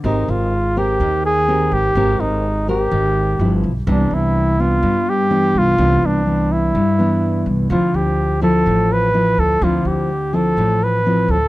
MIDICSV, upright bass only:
0, 0, Header, 1, 2, 480
1, 0, Start_track
1, 0, Tempo, 478469
1, 40, Time_signature, 4, 2, 24, 8
1, 11517, End_track
2, 0, Start_track
2, 0, Title_t, "Upright bass"
2, 0, Program_c, 0, 32
2, 38, Note_on_c, 0, 32, 99
2, 263, Note_off_c, 0, 32, 0
2, 284, Note_on_c, 0, 32, 88
2, 964, Note_off_c, 0, 32, 0
2, 1001, Note_on_c, 0, 39, 89
2, 1683, Note_off_c, 0, 39, 0
2, 1719, Note_on_c, 0, 32, 83
2, 1945, Note_off_c, 0, 32, 0
2, 1959, Note_on_c, 0, 32, 99
2, 2185, Note_off_c, 0, 32, 0
2, 2208, Note_on_c, 0, 32, 82
2, 2887, Note_off_c, 0, 32, 0
2, 2926, Note_on_c, 0, 32, 85
2, 3372, Note_off_c, 0, 32, 0
2, 3404, Note_on_c, 0, 31, 89
2, 3628, Note_off_c, 0, 31, 0
2, 3646, Note_on_c, 0, 35, 83
2, 3869, Note_off_c, 0, 35, 0
2, 3882, Note_on_c, 0, 36, 108
2, 4107, Note_off_c, 0, 36, 0
2, 4845, Note_on_c, 0, 43, 78
2, 5525, Note_off_c, 0, 43, 0
2, 5562, Note_on_c, 0, 36, 81
2, 5787, Note_off_c, 0, 36, 0
2, 5802, Note_on_c, 0, 36, 104
2, 6027, Note_off_c, 0, 36, 0
2, 6042, Note_on_c, 0, 36, 80
2, 6724, Note_off_c, 0, 36, 0
2, 6768, Note_on_c, 0, 43, 83
2, 7447, Note_off_c, 0, 43, 0
2, 7482, Note_on_c, 0, 36, 81
2, 7707, Note_off_c, 0, 36, 0
2, 7723, Note_on_c, 0, 38, 99
2, 7947, Note_off_c, 0, 38, 0
2, 7967, Note_on_c, 0, 38, 88
2, 8645, Note_off_c, 0, 38, 0
2, 8694, Note_on_c, 0, 33, 87
2, 9369, Note_off_c, 0, 33, 0
2, 9407, Note_on_c, 0, 38, 82
2, 9629, Note_off_c, 0, 38, 0
2, 9644, Note_on_c, 0, 38, 100
2, 9867, Note_off_c, 0, 38, 0
2, 9881, Note_on_c, 0, 38, 78
2, 10562, Note_off_c, 0, 38, 0
2, 10601, Note_on_c, 0, 33, 79
2, 11282, Note_off_c, 0, 33, 0
2, 11318, Note_on_c, 0, 38, 84
2, 11517, Note_off_c, 0, 38, 0
2, 11517, End_track
0, 0, End_of_file